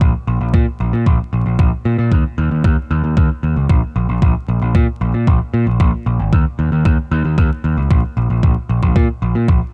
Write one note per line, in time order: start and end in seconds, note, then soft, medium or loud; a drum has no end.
0.01 0.12 A#1 loud
0.01 kick loud
0.27 0.39 A#1 medium
0.41 0.52 A#1 medium
0.54 0.65 A#2 medium
0.54 kick loud
0.80 0.91 A#1 medium
0.93 1.05 A#2 medium
1.06 1.18 A#1 loud
1.06 kick loud
1.33 1.44 A#1 medium
1.46 1.57 A#1 medium
1.59 1.70 A#1 loud
1.59 kick loud
1.85 1.97 A#2 medium
1.99 2.10 A#2 medium
2.12 2.23 D#2 medium
2.12 kick loud
2.38 2.49 D#2 medium
2.51 2.63 D#2 medium
2.64 2.76 D#2 loud
2.64 kick loud
2.91 3.02 D#2 medium
3.04 3.15 D#2 medium
3.17 3.28 D#2 loud
3.17 kick loud
3.43 3.55 D#2 medium
3.56 3.68 C#2 medium
3.69 3.81 A#1 medium
3.69 kick loud
3.96 4.07 A#1 medium
4.09 4.20 A#1 medium
4.22 4.33 A#1 medium
4.22 kick loud
4.48 4.60 A#1 medium
4.62 4.73 A#1 medium
4.75 4.86 A#2 medium
4.75 kick loud
5.01 5.12 A#1 medium
5.14 5.26 A#2 medium
5.27 5.39 A#1 loud
5.27 kick loud
5.54 5.65 A#2 medium
5.67 5.78 A#1 medium
5.80 5.91 A#1 loud
5.80 kick loud
6.06 6.18 A#1 medium
6.19 6.31 G#1 medium
6.33 6.44 D#2 loud
6.33 kick loud
6.59 6.70 D#2 medium
6.72 6.83 D#2 medium
6.85 6.97 D#2 loud
6.85 kick loud
7.12 7.23 D#2 medium
7.25 7.36 D#2 medium
7.38 7.49 D#2 loud
7.38 kick loud
7.64 7.76 D#2 medium
7.77 7.89 C#2 medium
7.91 8.02 A#1 loud
7.91 kick loud
8.17 8.28 A#1 medium
8.30 8.41 A#1 medium
8.43 8.55 A#1 loud
8.43 kick loud
8.69 8.81 A#1 medium
8.83 8.94 A#1 medium
8.83 kick medium
8.96 9.07 A#2 loud
8.96 kick loud
9.22 9.33 A#1 medium
9.35 9.47 A#2 medium
9.48 9.60 A#1 loud
9.48 kick loud